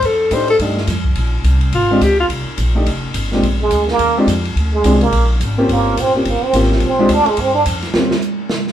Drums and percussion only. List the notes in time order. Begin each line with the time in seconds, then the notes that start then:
0.02 kick, ride
0.31 kick, hi-hat pedal, ride
0.48 ride
0.59 kick, ride
0.77 snare
0.87 kick, snare, hi-hat pedal, ride
1.05 kick
1.16 kick, ride
1.44 kick, hi-hat pedal, ride
1.61 ride
1.73 kick, ride
2.01 kick, hi-hat pedal, ride
2.30 kick, ride
2.58 kick, hi-hat pedal, ride
2.86 kick, ride
3.14 kick, hi-hat pedal, ride
3.32 snare
3.43 kick, ride
3.71 kick, hi-hat pedal, ride
3.88 snare
3.99 kick, ride
4.28 kick, hi-hat pedal, ride
4.45 ride
4.56 kick, ride
4.84 kick, hi-hat pedal, ride
5.01 ride
5.12 kick, ride
5.41 kick, hi-hat pedal, ride
5.69 kick, ride
5.97 kick, hi-hat pedal, ride
6.25 kick, ride
6.54 kick, hi-hat pedal, ride
6.63 snare
6.72 snare
6.80 kick, ride
7.09 kick, hi-hat pedal, ride
7.26 ride
7.37 kick, ride
7.66 kick, hi-hat pedal, ride
7.82 snare, ride
7.94 snare
8.11 snare
8.22 hi-hat pedal
8.49 snare
8.67 snare